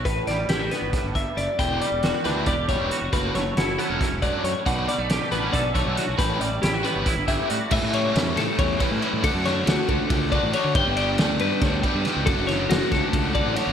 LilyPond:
<<
  \new Staff \with { instrumentName = "Clean electric guitar" } { \time 7/8 \key a \mixolydian \tempo 4 = 138 b'8 d''8 g'8 b'4 e''8 d''8 | g''8 d''4 b'8 d''8 cis''4 | b'8 cis''8 fis'8 a'4 d''8 cis''8 | fis''8 d''4 b'8 d''8 cis''4 |
b'8 d''8 g'8 b'4 e''8 d''8 | e''8 cis''4 a'8 cis''8 b'4 | a'8 cis''8 fis'8 a'4 d''8 cis''8 | g''8 d''4 b'8 cis''8 b'4 |
a'8 cis''8 fis'8 a'4 d''8 cis''8 | }
  \new Staff \with { instrumentName = "Overdriven electric guitar" } { \time 7/8 \key a \mixolydian r2. r8 | <e b e' g'>8 r4 <e b e' g'>8 r8 <e b e' g'>8 r8 | <fis a cis' fis'>8 r4 <fis a cis' fis'>8 r8 <fis a cis' fis'>8 r8 | <fis b d' fis'>8 r4 <fis b d' fis'>8 r8 <fis b d' fis'>8 r8 |
<e g cis' g'>8 r4 <e g cis' g'>8 r8 <e g cis' g'>8 r8 | <a, e g cis' e'>2~ <a, e g cis' e'>8 <a, e g cis' e'>8 <a, e g cis' e'>8 | <d a d' fis'>2~ <d a d' fis'>8 <d a d' fis'>8 <d a d' fis'>8 | <g b d' g'>2~ <g b d' g'>8 <g b d' g'>8 <g b d' g'>8 |
<fis a d' fis'>2~ <fis a d' fis'>8 <fis a d' fis'>8 <fis a d' fis'>8 | }
  \new Staff \with { instrumentName = "Clean electric guitar" } { \time 7/8 \key a \mixolydian << { r8 g8 e'16 fis'16 b2~ | b8 g8 fis'8 d'8 g'8 g8 fis'8 | r8 a8 e'8 b16 cis'4.~ cis'16 | r8 g16 a16 g'8 b16 cis'16 a'8 a8 fis'8 |
r8 g8 e'16 fis'16 b8 e'8 g8 fis'8 | r2. r8 | r2. r8 | r2. r8 |
r2. r8 | } \\ { a,2 a,8 g,8 fis,8 | e,2.~ e,8 | fis,2 fis,8 g,8 a,8 | b,2.~ b,8 |
a,2.~ a,8~ | a,2.~ a,8 | r2. r8 | r2. r8 |
r2. r8 | } >> }
  \new Staff \with { instrumentName = "Fingered electric bass" } { \clef bass \time 7/8 \key a \mixolydian a,,8 a,,8 a,,8 r16 g,,16 r16 g,,8 r16 fis,,16 r16 | e,,8 r16 e,,8 r16 d,8 e,,8. e,,16 r16 eis,,16 | fis,,8 fis,,8 fis,,8 r16 e,,16 r16 e,,8 r16 fis,16 r16 | b,,8 r16 b,,8 r16 a,,8 b,,8. b,,16 r16 b,,16 |
a,,8 a,,8 a,,8 r16 g,,16 r16 g,,8 r16 a,16 r16 | a,16 a,8. e,8 a,16 r16 e,8 r16 a,16 r16 a,16 | d,16 fis,8. d,16 r16 cis,16 r16 cis,8. a,,16 r16 d16 | g,,16 g,,8. d,8 g,16 r16 d,8 r16 g,16 r16 cis,16 |
fis,,16 fis,,8. fis,,16 r16 cis,16 r16 cis,8. a,,16 r16 g,,16 | }
  \new DrumStaff \with { instrumentName = "Drums" } \drummode { \time 7/8 <hh bd>8 <hh sn>8 <hh sn>8 <hh sn>8 <hh bd sn>8 <hh bd>8 hh8 | <hh bd>8 hh8 <hh sn>8 <hh sn>8 <hh bd>8 <hh bd>8 hh8 | <hh bd>8 <hh sn>8 <hh sn>8 hh8 <hh bd sn>8 <hh bd>8 hh8 | <hh bd>8 hh8 <hh sn>8 hh8 <hh bd>8 <hh bd>8 <hh sn>8 |
<hh bd>8 hh8 <hh sn>8 hh8 <hh bd>8 <hh bd>8 hh8 | <cymc bd>8 cymr8 <cymr sn>8 <cymr sn>8 <bd cymr>8 <bd cymr>8 cymr8 | <bd cymr>8 <cymr sn>8 <cymr sn>8 <bd cymr>8 <bd cymr>8 <bd cymr>8 cymr8 | <bd cymr>8 cymr8 <cymr sn>8 cymr8 <bd cymr sn>8 <bd cymr>8 <cymr sn>8 |
<bd cymr>8 <cymr sn>8 <cymr sn>8 <bd cymr sn>8 <bd cymr>8 <bd cymr>8 cymr8 | }
>>